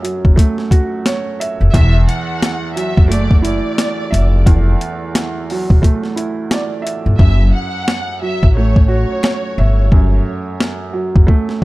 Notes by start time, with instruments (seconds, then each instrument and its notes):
Already playing: grand piano F#2 A3 F#4 C#5 E5
0.02 grand piano F#3, closed hi-hat
0.25 upright bass F#1, kick
0.36 grand piano A3, kick, closed hi-hat
0.58 snare
0.71 grand piano F#4, kick, closed hi-hat
1.06 grand piano C#5, snare, closed hi-hat
1.40 grand piano E5, closed hi-hat
1.61 upright bass F1
1.74 upright bass E1, grand piano E2, violin section E5, kick, closed hi-hat
2.08 violin section F#5, closed hi-hat
2.42 snare, closed hi-hat
2.74 grand piano F#3, violin section E5, closed hi-hat
2.97 upright bass F#1, kick
3.08 grand piano A3, violin section D5, closed hi-hat
3.31 kick
3.42 grand piano E4, violin section D5, closed hi-hat
3.78 grand piano D5, snare, closed hi-hat
4.11 upright bass F1, grand piano E5, closed hi-hat
4.46 grand piano E2, kick, closed hi-hat
4.81 closed hi-hat
5.15 snare, closed hi-hat
5.50 grand piano F#3, open hi-hat
5.70 upright bass E1, kick
5.82 grand piano A3, kick, closed hi-hat
6.04 snare
6.16 grand piano E4, closed hi-hat
6.51 grand piano D5, snare, closed hi-hat
6.82 grand piano E5
6.87 closed hi-hat
7.06 upright bass G1
7.19 upright bass F#1, grand piano F#2, violin section E5, kick
7.54 violin section F#5
7.88 finger snap, snare
8.21 grand piano F#3, violin section E5
8.43 upright bass A1, kick
8.55 grand piano A3, violin section C#5
8.76 kick
8.88 grand piano F#4, violin section C#5
9.23 grand piano C#5, finger snap, snare
9.58 upright bass G1, grand piano E5
9.92 grand piano F#2, kick
10.60 finger snap, snare
10.93 grand piano F#3
11.16 upright bass F#1, kick
11.27 grand piano A3, kick
11.49 snare